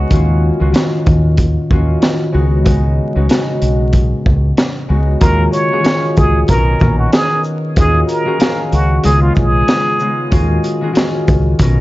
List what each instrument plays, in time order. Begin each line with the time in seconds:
Already playing: harp C#3 G#3
0.11 fingered electric bass D#2, harp D#3 A#3 C#4 F4 F#4, kick, closed hi-hat
0.59 fingered electric bass C#2, harp D#3 A#3 C#4 F4 F#4
0.72 harp D#3 A#3 C#4 F4 F#4, snare, closed hi-hat
1.06 fingered electric bass D#2, kick, closed hi-hat
1.37 kick, closed hi-hat
1.70 fingered electric bass D#2, harp D#3 A#3 C#4 F4 F#4, kick
2.02 snare, closed hi-hat
2.32 fingered electric bass C#2, harp C#3 G#3 B3 D#4 F#4
2.64 harp C#3 G#3 B3 D#4 F#4, kick, closed hi-hat
3.15 fingered electric bass C#2, harp C#3 G#3 B3 D#4 F#4
3.29 harp C#3 G#3 B3 D#4 F#4, snare, closed hi-hat
3.62 fingered electric bass B1, closed hi-hat
3.93 kick, closed hi-hat
4.26 fingered electric bass C#2, kick
4.57 snare, closed hi-hat
4.88 fingered electric bass C#2, harp C#3 G#3 B3 D#4 F#4
5.20 fingered electric bass D#2, harp D#3 A#3 C#4 F4 F#4 G#4, muted trumpet A#4, kick, closed hi-hat
5.53 muted trumpet C#5, closed hi-hat, shaker
5.71 harp D#3 A#3 C#4 F4 F#4 G#4
5.81 harp D#3 A#3 C#4 F4 F#4 G#4, closed hi-hat
5.86 snare
6.17 fingered electric bass C#2, muted trumpet G#4, kick, closed hi-hat, shaker
6.48 fingered electric bass B1, harp B2 B3 C#4 D#4, muted trumpet A#4, kick, closed hi-hat
6.52 harp A#4
6.79 fingered electric bass A#1, harp D#3 B3 C#4 D#4 A#4, kick, shaker
6.99 muted trumpet F#4
7.13 muted trumpet G#4, snare, closed hi-hat
7.44 shaker
7.76 fingered electric bass D#2, harp D#3 A#3 C#4 F4 F#4 G#4, muted trumpet G#4, kick, closed hi-hat
8.07 muted trumpet A#4, closed hi-hat, shaker
8.25 harp D#3 A#3 C#4 F4 F#4 G#4
8.39 harp D#3 A#3 C#4 F#4 G#4 F5, snare, closed hi-hat
8.72 fingered electric bass C#2, muted trumpet F#4, closed hi-hat, shaker
9.03 fingered electric bass C#2, harp C#3 G#3 B3 D#4 F4, muted trumpet G#4, closed hi-hat
9.22 muted trumpet F4
9.35 fingered electric bass B1, muted trumpet G#4, kick, shaker
9.68 snare, closed hi-hat
10.00 harp C#3 G#3 B3 D#4 F4, shaker
10.30 fingered electric bass D#2, harp D#3 A#3 C#4 F4 F#4 G#4, kick, closed hi-hat
10.64 closed hi-hat, shaker
10.81 harp D#3 A#3 C#4 F4 F#4 G#4
10.92 harp D#3 A#3 C#4 F4 F#4 G#4, closed hi-hat
10.97 snare
11.28 fingered electric bass C#2, kick, closed hi-hat, shaker
11.59 fingered electric bass B1, harp B2 B3 C#4 D#4 A#4, kick, closed hi-hat